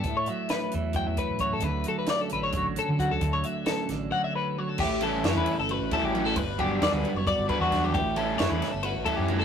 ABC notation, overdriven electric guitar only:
X:1
M:7/8
L:1/8
Q:1/4=133
K:Amix
V:1 name="Overdriven electric guitar"
z6 z | z6 z | z6 z | z [E,G,CE] [E,G,CE] z2 [E,G,CE] [E,G,CE] |
z [D,G,B,D] [D,G,B,D] z2 [D,G,B,D] [D,G,B,D] | z [E,G,CE] [E,G,CE] z2 [E,G,CE] [E,G,CE] |]